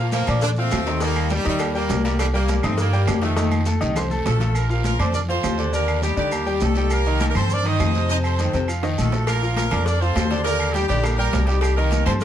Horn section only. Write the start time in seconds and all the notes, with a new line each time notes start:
Already playing: F3 A#3
0.12 F3 A#3
0.42 D3 A#3 D4
0.59 A3 C4
1.02 G3 A#3
1.32 D#3 G3
1.48 D#3 G3
1.76 G3 A#3
2.05 D#3 G3
2.19 D#3 G3
2.34 G3 A#3
2.64 C3 A3 C4
2.79 G3 A#3
3.23 F3 A3
4.27 A3 F4 A4
4.56 A#3 F4 A#4
4.72 A#3 G4 A#4
4.85 A#3 F4 A#4
5.00 C4 A4 C5
5.14 D4 A#4 D5
5.29 C4 A4 C5
5.74 A#3 G4 A#4
6.03 G3 D#4 G4
6.18 G3 D#4 G4
6.62 A3 D#4 A4
6.92 A#3 G4 A#4
7.21 A#3 G4 A4 A#4
7.29 A#3 G4 A#4
7.36 C4 A4 C5
7.52 D4 A#4 D5
7.66 D#4 C5 D#5
8.10 D#4 C5 D#5
8.25 C4 A4 C5
8.98 A3 F4 A4
9.27 A#3 F4 A#4
9.56 A#3 F4 A#4
9.85 D4 A#4 D5
10.00 C4 A4 C5
10.43 A#3 G4 A#4
10.72 G3 D#4 G4
10.88 G3 D#4 G4
11.17 A#3 G4 A#4
11.46 G3 D#4 G4
11.61 G3 D#4 G4
11.76 A#3 G4 A#4
12.05 C4 A4 C5
12.21 A#3 A#4